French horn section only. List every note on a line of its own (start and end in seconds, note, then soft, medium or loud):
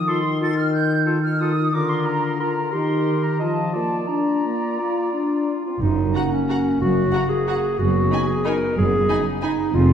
0.00 1.69 D#3 medium
1.73 2.72 D3 medium
2.73 3.39 D#3 medium
3.41 3.74 F3 soft
3.74 4.05 A#3 soft
4.07 4.41 D4 soft
4.45 4.78 A#3 soft
4.79 5.13 F4 soft
5.13 5.51 D4 soft
5.66 5.73 C4 soft
5.82 7.76 A#3 soft
5.82 7.76 F#4 soft
7.80 9.70 B3 soft
7.80 9.72 G#4 soft
9.73 9.93 C#4 soft
9.73 9.93 G#4 soft